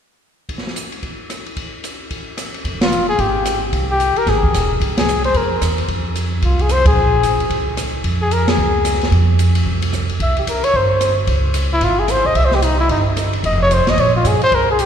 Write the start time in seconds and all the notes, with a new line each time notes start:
0.49 kick, ride
0.58 snare
0.67 snare
0.76 hi-hat pedal, ride
0.92 ride
1.03 kick, ride
1.30 cross-stick, hi-hat pedal, ride
1.46 ride
1.57 kick, ride
1.84 hi-hat pedal, ride
2.11 kick, ride
2.37 cross-stick, hi-hat pedal, ride
2.54 ride
2.64 F1, kick, ride
2.81 F4, snare, ride
2.92 hi-hat pedal
3.09 G#4
3.18 G#1 G4, kick, ride
3.45 cross-stick, hi-hat pedal, ride
3.73 C2, kick, ride
3.91 G4
4.00 hi-hat pedal, ride
4.16 A#4, muted upright bass stroke, ride
4.27 G#1 G#4, kick, snare, ride
4.43 kick
4.53 E1, cross-stick, hi-hat pedal, ride
4.80 C2, kick, ride
4.97 G#4, snare, ride
5.08 hi-hat pedal
5.24 C5, ride
5.34 F2 A#4, kick, ride
5.61 E2, cross-stick, hi-hat pedal, ride
5.78 ride
5.88 F2, kick, ride
6.15 hi-hat pedal, ride
6.42 C2 F4, kick, ride
6.59 G#4, ride
6.69 C5, cross-stick, hi-hat pedal, ride
6.86 G#4, kick, ride
6.96 A#1
7.23 G#1, hi-hat pedal, ride
7.40 ride
7.50 C#2, kick, ride
7.77 cross-stick, hi-hat pedal, ride
8.04 F2, kick, ride
8.22 G#4
8.31 A#4, hi-hat pedal, ride
8.48 G#4, snare, ride
8.58 C#2
8.85 cross-stick, hi-hat pedal, ride
8.94 snare
9.01 snare, ride
9.11 F2, kick, ride
9.39 hi-hat pedal, ride
9.55 ride
9.66 C2, kick
9.82 ride
9.93 cross-stick, hi-hat pedal
10.09 muted upright bass stroke, ride
10.20 C2 E5, kick, ride
10.37 G4, ride
10.46 C#2 A#4, hi-hat pedal, ride
10.64 C#5, ride
10.74 G1 C5, kick
11.00 cross-stick, hi-hat pedal, ride
11.27 C#2, kick, ride
11.54 hi-hat pedal, ride
11.73 E4
11.81 G#1 F4, kick, ride
11.99 G#4
12.08 C5, cross-stick, hi-hat pedal, ride
12.25 B1 D#5
12.35 C2 E5, kick, ride
12.45 C5
12.51 G4, snare
12.62 D#4, hi-hat pedal, ride
12.80 E4
12.89 G1 D#4, kick, ride
13.17 cross-stick, hi-hat pedal, ride
13.33 ride
13.43 F1 D#5, kick, ride
13.62 C#5
13.71 C5, hi-hat pedal, ride
13.87 G#1 D#5, snare, ride
13.98 A#1 C#5, kick, ride
14.16 F4
14.24 G2 G#4, cross-stick, hi-hat pedal, ride
14.41 C5, ride
14.52 C2 A#4, kick, ride
14.71 G#4
14.79 G4, hi-hat pedal, ride